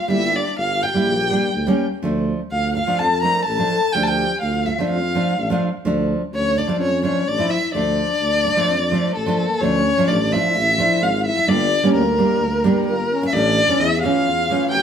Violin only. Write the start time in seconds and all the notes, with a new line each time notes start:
0.11 E5
0.35 D5
0.59 F5
0.83 G5
2.52 F5
2.75 F5
2.98 A5
3.23 A#5
3.45 A5
3.93 G5
4.03 G5 A5
4.41 F5
4.66 E5
4.90 F5
6.34 C#5
6.58 D5
6.82 C#5
7.05 C#5
7.28 D5
7.50 E5
7.74 D5
9.15 A4
9.61 C#5
10.08 D5
10.32 E5
11.03 F5
11.25 E5
11.48 D5
11.94 A#4
12.87 A#4
13.27 E5
13.33 D5
13.80 E5
14.02 F5
14.71 G5